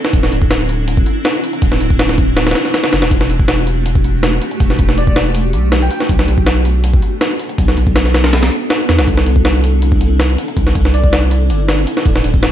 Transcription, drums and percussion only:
0.05 snare
0.13 kick, open hi-hat
0.23 snare
0.32 open hi-hat
0.42 kick
0.51 snare, open hi-hat
0.69 open hi-hat
0.88 open hi-hat
0.97 kick
1.06 open hi-hat
1.25 snare, open hi-hat
1.44 open hi-hat
1.53 closed hi-hat
1.62 kick, open hi-hat
1.72 snare
1.81 open hi-hat
1.90 kick
1.99 snare, open hi-hat
2.09 snare
2.18 kick, open hi-hat
2.37 snare, open hi-hat
2.47 snare, open hi-hat
2.51 snare, open hi-hat
2.55 snare, open hi-hat
2.65 snare
2.74 snare, open hi-hat
2.84 snare, open hi-hat
2.93 snare, open hi-hat
3.02 snare, open hi-hat
3.11 kick, open hi-hat
3.21 snare
3.30 open hi-hat
3.40 kick
3.48 snare, open hi-hat
3.67 open hi-hat
3.86 open hi-hat
3.96 kick
4.04 open hi-hat
4.23 snare, open hi-hat
4.42 open hi-hat
4.51 closed hi-hat
4.60 kick, open hi-hat
4.70 snare
4.79 kick, open hi-hat
4.89 snare
4.98 open hi-hat
5.07 kick
5.16 snare, open hi-hat
5.35 open hi-hat
5.53 open hi-hat
5.72 snare, open hi-hat
5.91 open hi-hat
6.00 snare
6.09 kick, open hi-hat
6.19 snare
6.28 open hi-hat
6.38 kick
6.47 snare, open hi-hat
6.65 open hi-hat
6.84 open hi-hat
6.94 kick
7.02 open hi-hat
7.21 snare, open hi-hat
7.40 open hi-hat
7.49 closed hi-hat
7.58 kick, open hi-hat
7.68 snare
7.77 open hi-hat
7.87 kick
7.96 snare, open hi-hat
8.05 snare
8.14 snare, open hi-hat
8.24 snare, open hi-hat
8.33 snare, open hi-hat
8.43 snare, open hi-hat
8.52 open hi-hat
8.70 snare, open hi-hat
8.89 snare, open hi-hat
8.99 snare, open hi-hat
9.08 kick, open hi-hat
9.17 snare
9.26 open hi-hat
9.36 kick
9.45 snare, open hi-hat
9.64 open hi-hat
9.82 open hi-hat
9.92 kick
10.01 open hi-hat
10.20 snare, open hi-hat
10.38 open hi-hat
10.48 closed hi-hat
10.57 kick, open hi-hat
10.67 snare
10.75 kick, open hi-hat
10.85 snare
10.94 open hi-hat
11.04 kick
11.13 snare, open hi-hat
11.31 open hi-hat
11.50 open hi-hat
11.68 snare, open hi-hat
11.87 open hi-hat
11.97 snare
12.06 kick, open hi-hat
12.16 snare
12.24 open hi-hat
12.34 kick
12.43 snare, open hi-hat

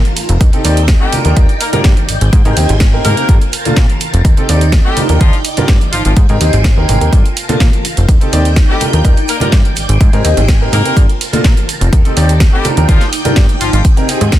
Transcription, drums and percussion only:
0.05 closed hi-hat, maracas
0.17 open hi-hat, maracas
0.29 closed hi-hat, maracas
0.41 kick, closed hi-hat, maracas
0.53 closed hi-hat, high conga, maracas
0.65 open hi-hat, maracas
0.77 closed hi-hat, maracas
0.88 kick, snare, closed hi-hat, maracas
1.01 maracas
1.12 open hi-hat, high conga, maracas
1.25 closed hi-hat, maracas
1.37 kick, closed hi-hat, maracas
1.49 closed hi-hat, maracas
1.61 open hi-hat, maracas
1.73 closed hi-hat, high conga, maracas
1.84 kick, snare, closed hi-hat, low conga, maracas
1.97 closed hi-hat, maracas
2.09 open hi-hat, maracas
2.21 closed hi-hat, maracas
2.33 kick, closed hi-hat, maracas
2.45 closed hi-hat, high conga, maracas
2.57 open hi-hat, maracas
2.69 closed hi-hat, low conga, maracas
2.80 kick, snare, closed hi-hat, maracas
2.94 maracas
3.05 open hi-hat, high conga, maracas
3.17 closed hi-hat, maracas
3.29 kick, closed hi-hat, maracas
3.41 closed hi-hat, maracas
3.53 open hi-hat, maracas
3.65 closed hi-hat, high conga, maracas
3.76 kick, snare, closed hi-hat, low conga, maracas
3.90 closed hi-hat, maracas
4.01 open hi-hat, maracas
4.14 closed hi-hat, maracas
4.25 kick, closed hi-hat, maracas
4.37 closed hi-hat, high conga, maracas
4.49 open hi-hat, maracas
4.61 closed hi-hat, maracas
4.72 kick, snare, closed hi-hat, maracas
4.85 maracas
4.97 open hi-hat, high conga, maracas
5.09 closed hi-hat, maracas
5.21 kick, closed hi-hat, maracas
5.33 closed hi-hat, maracas
5.45 open hi-hat, maracas
5.57 closed hi-hat, high conga, maracas
5.68 kick, snare, closed hi-hat, low conga, maracas
5.81 closed hi-hat, maracas
5.93 open hi-hat, maracas
6.05 closed hi-hat, maracas
6.17 kick, closed hi-hat, maracas
6.29 closed hi-hat, high conga, maracas
6.41 open hi-hat, maracas
6.53 closed hi-hat, low conga, maracas
6.64 kick, snare, closed hi-hat, maracas
6.76 maracas
6.89 open hi-hat, high conga, maracas
7.01 closed hi-hat, maracas
7.13 kick, closed hi-hat, maracas
7.25 closed hi-hat, maracas
7.37 open hi-hat, maracas
7.49 closed hi-hat, high conga, maracas
7.60 kick, snare, closed hi-hat, low conga, maracas
7.73 closed hi-hat, maracas
7.85 open hi-hat, maracas
7.97 closed hi-hat, maracas
8.09 kick, closed hi-hat, maracas
8.21 closed hi-hat, high conga, maracas
8.33 open hi-hat, maracas
8.45 closed hi-hat, maracas
8.56 kick, snare, closed hi-hat, maracas
8.69 maracas
8.80 open hi-hat, high conga, maracas
8.93 closed hi-hat, maracas
9.05 kick, closed hi-hat, maracas
9.17 closed hi-hat, maracas
9.28 open hi-hat, maracas
9.40 closed hi-hat, high conga, maracas
9.52 kick, snare, closed hi-hat, low conga, maracas
9.65 closed hi-hat, maracas
9.76 open hi-hat, maracas
9.89 closed hi-hat, maracas
10.01 kick, closed hi-hat, maracas
10.13 closed hi-hat, high conga, maracas
10.25 open hi-hat, maracas
10.37 closed hi-hat, low conga, maracas
10.48 kick, snare, closed hi-hat, maracas
10.62 maracas
10.73 open hi-hat, high conga, maracas
10.85 closed hi-hat, maracas
10.97 kick, closed hi-hat, maracas
11.09 closed hi-hat, maracas
11.21 open hi-hat, maracas
11.33 closed hi-hat, high conga, maracas
11.44 kick, snare, closed hi-hat, low conga, maracas
11.57 closed hi-hat, maracas
11.69 open hi-hat, maracas
11.81 closed hi-hat, maracas
11.93 kick, closed hi-hat, maracas
12.05 closed hi-hat, high conga, maracas
12.17 open hi-hat, maracas
12.29 closed hi-hat, maracas
12.40 kick, snare, closed hi-hat, maracas
12.54 maracas
12.65 open hi-hat, high conga, maracas
12.77 closed hi-hat, maracas
12.89 kick, closed hi-hat, maracas
13.01 snare, closed hi-hat, maracas
13.13 open hi-hat, maracas
13.24 closed hi-hat, high conga, maracas
13.36 kick, snare, closed hi-hat, low conga, maracas
13.49 closed hi-hat, maracas
13.61 open hi-hat, maracas
13.73 closed hi-hat, maracas
13.85 kick, closed hi-hat
13.96 closed hi-hat, high conga, maracas
14.09 open hi-hat, maracas
14.21 closed hi-hat, low conga, maracas
14.32 kick, snare, closed hi-hat, maracas

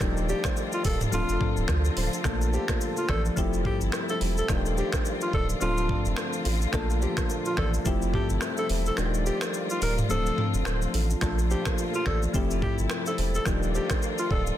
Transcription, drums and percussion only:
0.00 finger snap, kick, cross-stick, shaker
0.17 shaker
0.29 shaker
0.44 finger snap, kick, cross-stick, shaker
0.57 shaker
0.72 shaker
0.85 kick, open hi-hat, shaker
1.01 mid tom, shaker
1.13 shaker
1.29 shaker
1.41 kick, mid tom
1.57 shaker
1.68 finger snap, kick, cross-stick, shaker
1.85 shaker
1.97 open hi-hat
2.13 shaker
2.24 finger snap, kick, cross-stick, shaker
2.41 shaker
2.53 shaker
2.68 finger snap, kick, cross-stick, shaker
2.81 shaker
2.97 shaker
3.09 finger snap, kick, cross-stick
3.25 shaker
3.37 kick, shaker
3.53 shaker
3.65 kick, mid tom
3.81 shaker
3.92 finger snap, cross-stick, shaker
4.09 shaker
4.21 open hi-hat
4.37 shaker
4.48 finger snap, kick, cross-stick, shaker
4.66 shaker
4.78 shaker
4.93 finger snap, kick, cross-stick, shaker
5.05 shaker
5.21 shaker
5.33 kick
5.49 shaker
5.61 shaker
5.78 shaker
5.89 kick, mid tom
6.05 shaker
6.17 finger snap, cross-stick, shaker
6.33 shaker
6.45 open hi-hat
6.62 shaker
6.73 finger snap, kick, cross-stick, shaker
6.90 shaker
7.02 shaker
7.17 finger snap, kick, cross-stick, shaker
7.30 shaker
7.45 shaker
7.57 finger snap, kick, cross-stick
7.74 shaker
7.85 kick, shaker
8.02 shaker
8.14 kick, mid tom
8.30 shaker
8.41 finger snap, cross-stick, shaker
8.57 shaker
8.69 open hi-hat
8.86 shaker
8.97 finger snap, cross-stick, shaker
9.14 shaker
9.26 shaker
9.41 finger snap, cross-stick, shaker
9.54 shaker
9.70 shaker
9.82 open hi-hat, shaker
9.98 mid tom, shaker
10.10 shaker
10.26 shaker
10.38 mid tom
10.54 shaker
10.65 finger snap, cross-stick, shaker
10.82 shaker
10.94 open hi-hat
11.10 shaker
11.21 finger snap, kick, cross-stick, shaker
11.39 shaker
11.51 shaker
11.65 finger snap, kick, cross-stick, shaker
11.78 shaker
11.94 shaker
12.06 finger snap, kick, cross-stick
12.23 shaker
12.34 kick, shaker
12.51 shaker
12.62 kick, mid tom
12.78 shaker
12.90 finger snap, cross-stick, shaker
13.06 shaker
13.18 open hi-hat
13.35 shaker
13.46 finger snap, kick, cross-stick, shaker
13.63 shaker
13.75 shaker
13.90 finger snap, kick, cross-stick, shaker
14.02 shaker
14.18 shaker
14.31 kick
14.47 shaker

